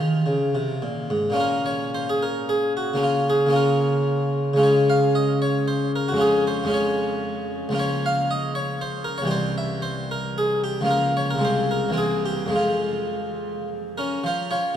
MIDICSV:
0, 0, Header, 1, 2, 480
1, 0, Start_track
1, 0, Key_signature, -5, "minor"
1, 0, Tempo, 563380
1, 1193, Time_signature, 3, 2, 24, 8
1, 1193, Tempo, 535236
1, 4553, Tempo, 522648
1, 6966, Key_signature, -4, "minor"
1, 10313, Tempo, 555042
1, 13207, End_track
2, 0, Start_track
2, 0, Title_t, "Harpsichord"
2, 0, Program_c, 0, 6
2, 0, Note_on_c, 0, 51, 50
2, 0, Note_on_c, 0, 65, 65
2, 221, Note_on_c, 0, 49, 52
2, 223, Note_off_c, 0, 51, 0
2, 456, Note_off_c, 0, 49, 0
2, 466, Note_on_c, 0, 48, 54
2, 700, Note_off_c, 0, 48, 0
2, 702, Note_on_c, 0, 46, 46
2, 729, Note_off_c, 0, 65, 0
2, 938, Note_off_c, 0, 46, 0
2, 940, Note_on_c, 0, 44, 45
2, 1108, Note_on_c, 0, 46, 51
2, 1125, Note_on_c, 0, 58, 45
2, 1138, Note_on_c, 0, 61, 44
2, 1157, Note_on_c, 0, 65, 44
2, 1171, Note_off_c, 0, 44, 0
2, 1195, Note_on_c, 0, 70, 80
2, 1424, Note_on_c, 0, 73, 83
2, 1434, Note_off_c, 0, 70, 0
2, 1632, Note_off_c, 0, 73, 0
2, 1682, Note_on_c, 0, 72, 88
2, 1797, Note_off_c, 0, 72, 0
2, 1816, Note_on_c, 0, 68, 71
2, 1924, Note_off_c, 0, 68, 0
2, 1933, Note_on_c, 0, 70, 79
2, 2162, Note_off_c, 0, 70, 0
2, 2171, Note_on_c, 0, 68, 75
2, 2367, Note_off_c, 0, 68, 0
2, 2420, Note_on_c, 0, 66, 74
2, 2553, Note_off_c, 0, 46, 0
2, 2562, Note_off_c, 0, 58, 0
2, 2569, Note_off_c, 0, 61, 0
2, 2570, Note_on_c, 0, 49, 53
2, 2579, Note_off_c, 0, 65, 0
2, 2585, Note_on_c, 0, 58, 48
2, 2598, Note_on_c, 0, 61, 44
2, 2648, Note_off_c, 0, 66, 0
2, 2657, Note_on_c, 0, 65, 81
2, 2888, Note_off_c, 0, 65, 0
2, 2893, Note_on_c, 0, 68, 81
2, 3034, Note_off_c, 0, 49, 0
2, 3045, Note_on_c, 0, 49, 58
2, 3052, Note_off_c, 0, 58, 0
2, 3063, Note_on_c, 0, 58, 46
2, 3066, Note_off_c, 0, 61, 0
2, 3077, Note_on_c, 0, 61, 46
2, 3090, Note_off_c, 0, 68, 0
2, 3095, Note_on_c, 0, 65, 47
2, 3129, Note_on_c, 0, 70, 73
2, 3962, Note_off_c, 0, 70, 0
2, 3993, Note_off_c, 0, 49, 0
2, 4004, Note_on_c, 0, 49, 54
2, 4019, Note_off_c, 0, 58, 0
2, 4027, Note_off_c, 0, 61, 0
2, 4028, Note_on_c, 0, 56, 49
2, 4036, Note_off_c, 0, 65, 0
2, 4037, Note_on_c, 0, 61, 51
2, 4051, Note_on_c, 0, 65, 48
2, 4091, Note_on_c, 0, 73, 93
2, 4323, Note_off_c, 0, 73, 0
2, 4328, Note_on_c, 0, 77, 99
2, 4558, Note_on_c, 0, 75, 96
2, 4561, Note_off_c, 0, 77, 0
2, 4763, Note_off_c, 0, 75, 0
2, 4802, Note_on_c, 0, 73, 104
2, 5005, Note_off_c, 0, 73, 0
2, 5039, Note_on_c, 0, 72, 91
2, 5243, Note_off_c, 0, 72, 0
2, 5296, Note_on_c, 0, 70, 92
2, 5408, Note_off_c, 0, 70, 0
2, 5413, Note_on_c, 0, 66, 87
2, 5447, Note_off_c, 0, 49, 0
2, 5449, Note_on_c, 0, 41, 64
2, 5452, Note_off_c, 0, 56, 0
2, 5463, Note_on_c, 0, 56, 54
2, 5464, Note_off_c, 0, 61, 0
2, 5471, Note_off_c, 0, 65, 0
2, 5486, Note_on_c, 0, 61, 53
2, 5504, Note_on_c, 0, 65, 52
2, 5527, Note_on_c, 0, 68, 92
2, 5528, Note_off_c, 0, 66, 0
2, 5731, Note_off_c, 0, 68, 0
2, 5770, Note_on_c, 0, 72, 99
2, 5912, Note_off_c, 0, 41, 0
2, 5923, Note_on_c, 0, 41, 68
2, 5924, Note_off_c, 0, 56, 0
2, 5935, Note_on_c, 0, 56, 55
2, 5942, Note_off_c, 0, 61, 0
2, 5953, Note_on_c, 0, 61, 53
2, 5967, Note_off_c, 0, 65, 0
2, 5974, Note_off_c, 0, 72, 0
2, 5978, Note_on_c, 0, 65, 50
2, 6014, Note_on_c, 0, 73, 83
2, 6725, Note_off_c, 0, 73, 0
2, 6889, Note_on_c, 0, 37, 64
2, 6893, Note_off_c, 0, 41, 0
2, 6900, Note_off_c, 0, 56, 0
2, 6907, Note_on_c, 0, 53, 53
2, 6909, Note_off_c, 0, 61, 0
2, 6920, Note_on_c, 0, 58, 52
2, 6922, Note_off_c, 0, 65, 0
2, 6939, Note_on_c, 0, 65, 54
2, 6984, Note_on_c, 0, 73, 103
2, 7210, Note_off_c, 0, 73, 0
2, 7227, Note_on_c, 0, 77, 117
2, 7451, Note_off_c, 0, 77, 0
2, 7455, Note_on_c, 0, 75, 107
2, 7650, Note_off_c, 0, 75, 0
2, 7680, Note_on_c, 0, 73, 104
2, 7915, Note_off_c, 0, 73, 0
2, 7921, Note_on_c, 0, 72, 93
2, 8133, Note_on_c, 0, 70, 98
2, 8154, Note_off_c, 0, 72, 0
2, 8255, Note_on_c, 0, 73, 96
2, 8261, Note_off_c, 0, 70, 0
2, 8296, Note_on_c, 0, 36, 65
2, 8308, Note_on_c, 0, 52, 49
2, 8314, Note_off_c, 0, 37, 0
2, 8323, Note_off_c, 0, 53, 0
2, 8325, Note_on_c, 0, 55, 50
2, 8330, Note_off_c, 0, 58, 0
2, 8339, Note_off_c, 0, 65, 0
2, 8341, Note_on_c, 0, 67, 59
2, 8377, Note_on_c, 0, 72, 109
2, 8382, Note_off_c, 0, 73, 0
2, 8585, Note_off_c, 0, 72, 0
2, 8622, Note_on_c, 0, 76, 102
2, 8848, Note_on_c, 0, 72, 109
2, 8863, Note_off_c, 0, 76, 0
2, 9096, Note_off_c, 0, 72, 0
2, 9114, Note_on_c, 0, 70, 105
2, 9349, Note_off_c, 0, 70, 0
2, 9358, Note_on_c, 0, 68, 89
2, 9556, Note_off_c, 0, 68, 0
2, 9584, Note_off_c, 0, 67, 0
2, 9595, Note_on_c, 0, 67, 90
2, 9742, Note_off_c, 0, 36, 0
2, 9748, Note_off_c, 0, 52, 0
2, 9754, Note_on_c, 0, 37, 65
2, 9756, Note_off_c, 0, 55, 0
2, 9761, Note_on_c, 0, 53, 51
2, 9786, Note_on_c, 0, 58, 53
2, 9800, Note_on_c, 0, 65, 56
2, 9830, Note_off_c, 0, 67, 0
2, 9842, Note_on_c, 0, 70, 102
2, 10041, Note_off_c, 0, 70, 0
2, 10083, Note_on_c, 0, 73, 98
2, 10197, Note_off_c, 0, 73, 0
2, 10209, Note_on_c, 0, 70, 82
2, 10252, Note_on_c, 0, 36, 61
2, 10261, Note_off_c, 0, 37, 0
2, 10265, Note_off_c, 0, 53, 0
2, 10276, Note_on_c, 0, 53, 48
2, 10278, Note_off_c, 0, 58, 0
2, 10285, Note_off_c, 0, 65, 0
2, 10291, Note_on_c, 0, 56, 53
2, 10308, Note_on_c, 0, 60, 51
2, 10322, Note_off_c, 0, 70, 0
2, 10338, Note_on_c, 0, 72, 98
2, 10559, Note_off_c, 0, 72, 0
2, 10565, Note_on_c, 0, 70, 96
2, 10709, Note_off_c, 0, 36, 0
2, 10719, Note_on_c, 0, 36, 57
2, 10728, Note_on_c, 0, 52, 44
2, 10749, Note_on_c, 0, 58, 46
2, 10752, Note_off_c, 0, 53, 0
2, 10753, Note_off_c, 0, 60, 0
2, 10759, Note_off_c, 0, 56, 0
2, 10763, Note_on_c, 0, 60, 43
2, 10793, Note_off_c, 0, 70, 0
2, 10794, Note_on_c, 0, 68, 74
2, 10994, Note_off_c, 0, 68, 0
2, 11036, Note_on_c, 0, 67, 88
2, 11218, Note_on_c, 0, 41, 53
2, 11223, Note_off_c, 0, 36, 0
2, 11228, Note_off_c, 0, 52, 0
2, 11231, Note_on_c, 0, 53, 47
2, 11238, Note_off_c, 0, 58, 0
2, 11240, Note_off_c, 0, 67, 0
2, 11246, Note_off_c, 0, 60, 0
2, 11246, Note_on_c, 0, 56, 48
2, 11266, Note_on_c, 0, 60, 43
2, 11296, Note_on_c, 0, 65, 76
2, 12266, Note_off_c, 0, 65, 0
2, 12524, Note_on_c, 0, 70, 83
2, 12534, Note_on_c, 0, 61, 63
2, 12673, Note_off_c, 0, 41, 0
2, 12679, Note_off_c, 0, 53, 0
2, 12687, Note_off_c, 0, 56, 0
2, 12697, Note_off_c, 0, 60, 0
2, 12715, Note_off_c, 0, 70, 0
2, 12737, Note_off_c, 0, 61, 0
2, 12750, Note_on_c, 0, 53, 70
2, 12772, Note_on_c, 0, 72, 101
2, 12782, Note_on_c, 0, 65, 74
2, 12974, Note_off_c, 0, 65, 0
2, 12984, Note_off_c, 0, 72, 0
2, 12984, Note_on_c, 0, 73, 90
2, 12990, Note_on_c, 0, 65, 73
2, 13075, Note_off_c, 0, 53, 0
2, 13191, Note_off_c, 0, 65, 0
2, 13204, Note_off_c, 0, 73, 0
2, 13207, End_track
0, 0, End_of_file